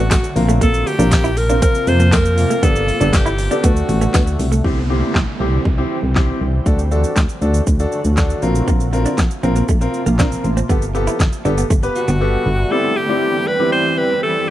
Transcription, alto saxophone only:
0.00 0.34 F#4 loud
0.62 0.88 A4 loud
0.87 1.39 G4 medium
1.37 1.62 A#4 loud
1.63 1.89 A#4 loud
1.88 2.14 C5 loud
2.13 2.65 A#4 loud
2.63 3.15 A4 loud
3.14 3.66 G4 medium
3.64 4.40 F#4 medium
11.96 12.73 F#4 medium
12.71 12.98 A4 loud
12.96 13.49 G4 loud
13.47 13.72 B4 loud
13.72 13.99 C5 loud
13.97 14.22 B4 loud
14.23 14.49 A4 loud

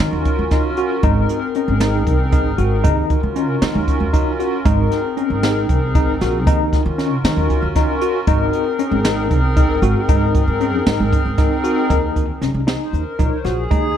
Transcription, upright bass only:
0.13 0.22 D#2 medium
0.39 0.58 D#2 medium
1.03 1.23 G#1 loud
1.68 2.07 G#1 medium
2.07 2.46 C2 medium
2.46 2.55 G#1 medium
2.58 2.86 G#1 medium
2.84 3.14 D#2 medium
3.23 3.49 D#3 medium
3.49 3.59 C3 medium
3.62 3.72 D#3 medium
3.75 3.85 D#2 medium
4.00 4.20 D#2 medium
4.65 4.85 G#1 loud
5.30 5.69 G#1 medium
5.69 6.07 C2 medium
6.07 6.17 G#1 medium
6.21 6.47 A#1 medium
6.47 6.76 D#2 medium
6.86 7.12 D#3 medium
7.12 7.21 C3 medium
7.24 7.34 D#3 medium
7.37 7.47 D#2 medium
7.62 7.82 D#2 medium
8.27 8.47 G#1 medium
8.91 9.31 G#1 medium
9.31 9.69 C2 medium
9.69 9.79 G#1 medium
9.82 9.92 G#1 medium
10.09 10.38 G#1 medium
10.48 10.74 G#2 medium
10.74 10.83 F2 medium
10.87 10.96 G#2 medium
11.00 11.10 G#1 medium
11.26 11.45 G#1 medium
11.90 12.29 D#2 medium
12.42 12.51 C2 medium
12.54 12.74 C2 medium
12.93 13.03 D#2 medium
13.20 13.29 A#1 medium
13.45 13.64 A#1 medium
13.71 13.91 D#2 medium

